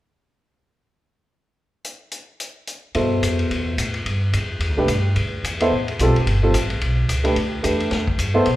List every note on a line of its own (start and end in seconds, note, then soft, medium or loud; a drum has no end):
1.84 closed hi-hat soft
2.11 closed hi-hat soft
2.40 closed hi-hat soft
2.67 closed hi-hat soft
2.94 3.21 G2 medium
2.94 3.71 B2 soft
2.94 3.71 E4 soft
2.94 3.71 A4 soft
2.94 3.71 C5 soft
2.94 ride soft
3.22 3.49 F2 medium
3.22 hi-hat pedal soft
3.22 ride medium
3.39 ride soft
3.50 3.77 E2 medium
3.50 ride soft
3.77 4.05 A2 medium
3.77 hi-hat pedal soft
3.77 ride soft
3.94 ride soft
4.05 4.32 G2 medium
4.05 ride soft
4.33 4.59 F2 medium
4.33 hi-hat pedal soft
4.33 ride soft
4.59 4.69 E2 medium
4.59 ride soft
4.69 4.77 D2 soft
4.77 4.87 B1 medium
4.77 4.87 A3 soft
4.77 4.88 D4 soft
4.77 4.88 G4 soft
4.77 4.88 B4 medium
4.87 5.15 G2 medium
4.87 hi-hat pedal soft
4.87 ride soft
5.15 5.42 D2 medium
5.15 ride soft
5.43 5.70 E2 medium
5.43 hi-hat pedal soft
5.43 ride soft
5.60 5.70 B3 medium
5.60 5.71 E4 medium
5.60 5.71 A4 soft
5.60 5.71 C5 medium
5.60 ride soft
5.71 5.98 A1 medium
5.88 ride soft
5.99 6.10 B1 medium
5.99 6.14 G3 soft
5.99 6.14 C4 soft
5.99 6.14 F4 medium
5.99 6.15 A4 medium
5.99 hi-hat pedal soft
5.99 ride soft
6.08 6.17 G1 soft
6.16 ride soft
6.26 6.53 G1 medium
6.26 ride soft
6.43 6.53 G3 soft
6.43 6.53 C4 soft
6.43 6.53 F4 soft
6.43 6.53 A4 soft
6.54 6.80 A1 medium
6.54 hi-hat pedal medium
6.54 ride soft
6.70 ride soft
6.81 7.08 B1 medium
6.81 ride soft
7.09 7.36 C#2 medium
7.09 hi-hat pedal soft
7.09 ride soft
7.24 7.35 A3 soft
7.24 7.35 D4 soft
7.24 7.35 G4 soft
7.24 7.35 B4 medium
7.24 ride soft
7.36 7.63 D2 medium
7.36 ride soft
7.63 7.90 E2 medium
7.63 8.04 A3 soft
7.63 8.04 D4 soft
7.63 8.04 G4 soft
7.63 8.04 B4 soft
7.63 hi-hat pedal soft
7.63 ride soft
7.80 ride soft
7.91 8.17 F2 medium
7.91 snare soft
7.91 ride soft
8.07 kick soft
8.18 8.45 G2 medium
8.18 hi-hat pedal soft
8.18 ride soft
8.34 8.45 B3 medium
8.34 8.45 E4 medium
8.34 8.45 A4 medium
8.34 8.46 C5 medium
8.46 8.56 B2 medium
8.46 ride soft